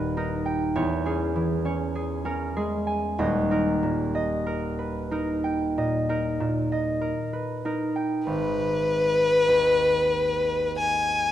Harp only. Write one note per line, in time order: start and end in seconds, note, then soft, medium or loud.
0.00 0.81 D#1 medium
0.00 0.82 D#2 medium
0.00 0.82 A#2 medium
0.00 0.16 D#4 medium
0.00 0.16 A#4 medium
0.00 0.38 B4 soft
0.00 0.82 D#5 medium
0.17 0.82 D#4 medium
0.17 0.82 A#4 medium
0.46 0.81 G5 medium
0.75 3.24 E2 medium
0.75 1.64 C#5 medium
1.05 1.64 C#4 soft
1.05 1.94 G#4 medium
1.36 3.24 E3 soft
1.65 2.24 C#4 soft
1.65 3.24 C#5 soft
1.95 2.55 G#4 medium
2.25 3.24 C#4 medium
2.25 2.78 A#4 soft
2.57 3.25 G#3 soft
2.57 3.24 G#4 medium
2.87 3.24 G#5 soft
3.18 7.08 D#1 medium
3.18 7.09 D#2 medium
3.18 4.14 D#5 medium
3.51 5.10 D#4 medium
3.51 4.45 A#4 medium
3.83 5.77 A#2 soft
4.15 5.76 D#5 medium
4.46 5.11 A#4 medium
4.79 5.34 B4 soft
5.11 6.08 D#4 medium
5.11 6.08 A#4 medium
5.44 7.95 G5 soft
5.78 6.39 A#2 soft
5.78 6.71 D#5 soft
6.09 7.64 D#4 soft
6.09 7.00 A#4 medium
6.40 8.31 A#2 soft
6.72 10.62 D#5 medium
7.01 7.64 A#4 soft
7.33 7.87 B4 soft
7.65 11.32 D#4 soft
7.65 8.31 A#4 medium
7.96 8.31 G5 soft
8.27 11.32 G#1 soft
9.48 11.32 D#2 soft